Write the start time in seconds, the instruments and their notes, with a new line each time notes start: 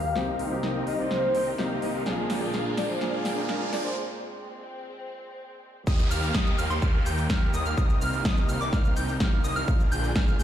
Already playing: string section D#3 A#3 G4, grand piano G3 A#3 D#4 G4, riser
0.04 detuned saw bass D#2, supersaw synth G4 A#4 F5
0.15 detuned saw bass C2, grand piano C3 A#3 C4 D#4 G4, string section C3 D#4, supersaw synth C4 D#4 G4 A#4 D#5, snare
0.39 detuned saw bass C2, supersaw synth C4 D#4 G4 A#4 F5, open hi-hat
0.50 grand piano C3 A#3 C4 D#4 G4
0.63 detuned saw bass C2, supersaw synth C4 D#4 G4 A#4 D#5, snare
0.87 detuned saw bass C2, supersaw synth C4 D#4 G4 A#4 F5, soft synth lead D#5, open hi-hat
0.99 detuned saw bass C2, supersaw synth C4 D#4 G4 A#4 D5, soft synth lead C5
1.11 detuned saw bass C2, supersaw synth C4 D#4 G4 A#4 F5, snare
1.35 detuned saw bass C2, supersaw synth C4 D#4 G4 A#4 G5, open hi-hat
1.58 detuned saw bass C2, grand piano C3 A#3 C4 D#4 G4, supersaw synth C4 D#4 G4 A#4 F5, snare
1.82 detuned saw bass C2, supersaw synth C4 D#4 G4 A#4 D#5, open hi-hat
1.94 detuned saw bass C2, supersaw synth C4 D#4 G4 A#4 F5
2.05 detuned saw bass A#1, grand piano A#2 A#3 D4 F4 G#4, string section A#2 G#3 D4, supersaw synth D4 F4 G#4 A#4 F5, snare
2.30 detuned saw bass A#1, supersaw synth D4 F4 G#4 A#4 G5, snare, open hi-hat
2.41 grand piano A#2 A#3 D4 F4 G#4
2.54 detuned saw bass A#1, supersaw synth D4 F4 G#4 A#4 F5, snare
2.77 detuned saw bass A#1, supersaw synth D4 F4 G#4 A#4 G5, soft synth lead D5, snare, open hi-hat
2.89 detuned saw bass A#1, supersaw synth D4 F4 G#4 A#4 D5, soft synth lead C5
3.01 detuned saw bass A#1, grand piano A#2 A#3 D4 F4 G#4, supersaw synth D4 F4 G#4 A#4 F5, snare
3.25 detuned saw bass A#1, supersaw synth D4 F4 G#4 A#4 G5, snare, open hi-hat
3.36 grand piano A#2 A#3 D4 F4 G#4
3.49 detuned saw bass A#1, supersaw synth D4 F4 G#4 A#4 F5, snare
3.73 detuned saw bass A#1, supersaw synth D4 F4 G#4 A#4 G5, soft synth lead D5, snare, open hi-hat
3.85 detuned saw bass A#1, supersaw synth D4 F4 G#4 A#4 D5, soft synth lead C5
3.96 string section C4
5.87 detuned saw bass D#2, string section D#3 A#3 G4, supersaw synth G4 A#4 D#5, digital synth lead D#6, kick, crash, downlifter, cabasa
5.99 cabasa
6.11 detuned saw bass D#2, supersaw synth G4 A#4 F5, digital synth lead F6, open hi-hat, cabasa
6.23 cabasa
6.35 detuned saw bass D#2, supersaw synth G4 A#4 D#5, digital synth lead D#6, kick, snare, cabasa
6.47 cabasa
6.58 detuned saw bass D#2, supersaw synth G4 A#4 F5, digital synth lead F6, open hi-hat, cabasa
6.70 detuned saw bass D#2, supersaw synth G4 A#4 C5, digital synth lead C6, cabasa
6.82 detuned saw bass D#2, supersaw synth G4 A#4 F5, digital synth lead F6, kick, cabasa
7.06 detuned saw bass D#2, supersaw synth G4 A#4 G5, digital synth lead G6, open hi-hat, cabasa
7.18 cabasa
7.30 detuned saw bass D#2, supersaw synth G4 A#4 F5, digital synth lead F6, kick, snare, cabasa
7.54 detuned saw bass D#2, supersaw synth G4 A#4 D#5, digital synth lead D#6, open hi-hat, cabasa
7.66 detuned saw bass D#2, supersaw synth G4 A#4 F5, digital synth lead F6, cabasa
7.77 detuned saw bass C2, string section C3 D#4, supersaw synth C4 D#4 G4 A#4 D#5, digital synth lead D#6, kick, cabasa
7.90 cabasa
8.01 detuned saw bass C2, supersaw synth C4 D#4 G4 A#4 F5, digital synth lead F6, open hi-hat, cabasa
8.13 cabasa
8.25 detuned saw bass C2, supersaw synth C4 D#4 G4 A#4 D#5, digital synth lead D#6, kick, snare, cabasa
8.37 cabasa
8.49 detuned saw bass C2, supersaw synth C4 D#4 G4 A#4 F5, digital synth lead F6, open hi-hat, cabasa
8.61 detuned saw bass C2, supersaw synth C4 D#4 G4 A#4 D5, digital synth lead D6, cabasa
8.73 detuned saw bass C2, supersaw synth C4 D#4 G4 A#4 F5, digital synth lead F6, kick, snare, cabasa
8.85 cabasa
8.96 detuned saw bass C2, supersaw synth C4 D#4 G4 A#4 G5, digital synth lead G6, open hi-hat, cabasa
9.09 cabasa
9.20 detuned saw bass C2, supersaw synth C4 D#4 G4 A#4 F5, digital synth lead F6, kick, snare, cabasa
9.44 detuned saw bass C2, supersaw synth C4 D#4 G4 A#4 D#5, digital synth lead D#6, open hi-hat, cabasa
9.56 detuned saw bass C2, supersaw synth C4 D#4 G4 A#4 F5, digital synth lead F6, cabasa
9.68 detuned saw bass A#1, string section D3 G#4, supersaw synth D4 F4 G#4 A#4 F5, digital synth lead F6, kick, cabasa
9.80 cabasa
9.92 detuned saw bass A#1, supersaw synth D4 F4 G#4 A#4 G5, digital synth lead G6, open hi-hat, cabasa
10.04 cabasa
10.16 detuned saw bass A#1, supersaw synth D4 F4 G#4 A#4 F5, digital synth lead F6, kick, snare, cabasa
10.28 cabasa
10.39 detuned saw bass A#1, supersaw synth D4 F4 G#4 A#4 G5, digital synth lead G6, open hi-hat, cabasa